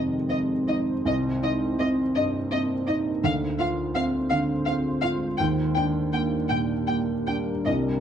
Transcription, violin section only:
0.30 0.38 D#5 soft
0.68 0.76 D#5 soft
1.06 1.14 D#5 soft
1.43 1.51 D#5 soft
1.80 1.88 D#5 medium
2.16 2.24 D#5 medium
2.51 2.59 D#5 medium
2.87 2.95 D#5 soft
3.24 3.32 F5 medium
3.59 3.67 F5 medium
3.95 4.03 F5 medium
4.30 4.38 F5 medium
4.66 4.74 F5 medium
5.02 5.10 F5 medium
5.38 5.46 G5 medium
5.76 5.84 G5 medium
6.13 6.21 G5 medium
6.50 6.58 G5 medium
6.87 6.95 G5 soft
7.27 7.35 G5 soft
7.66 7.74 D#5 soft

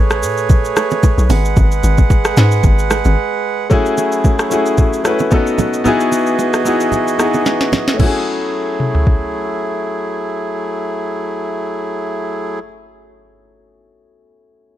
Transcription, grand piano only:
3.70 4.36 A3 loud
3.70 4.36 C#4 loud
3.70 4.37 E4 loud
3.70 4.37 F#4 medium
3.70 4.37 G#4 loud
4.50 4.95 A3 medium
4.50 4.95 C#4 medium
4.50 4.96 E4 medium
4.50 4.96 F#4 medium
4.50 4.96 G#4 medium
5.04 5.31 A3 medium
5.04 5.30 C#4 medium
5.04 5.32 E4 medium
5.04 5.32 F#4 medium
5.04 5.33 B4 medium
5.31 5.75 B3 medium
5.31 5.76 C#4 medium
5.31 5.76 D#4 medium
5.31 5.76 F#4 medium
5.31 5.77 A4 medium
5.84 6.50 B3 loud
5.84 6.51 D#4 loud
5.84 6.51 E4 loud
5.84 6.51 F#4 loud
5.84 6.52 G#4 loud
6.64 7.09 B3 medium
6.64 7.09 D#4 medium
6.64 7.10 E4 medium
6.64 7.10 F#4 medium
6.64 7.11 G#4 medium
7.18 7.84 B3 medium
7.18 7.84 D#4 medium
7.18 7.85 E4 medium
7.18 7.85 F#4 medium
7.18 7.86 G#4 medium
7.93 12.53 A3 medium
7.93 12.56 C#4 medium
8.00 12.60 E4 medium
8.00 12.63 F#4 medium
8.06 12.66 G#4 medium

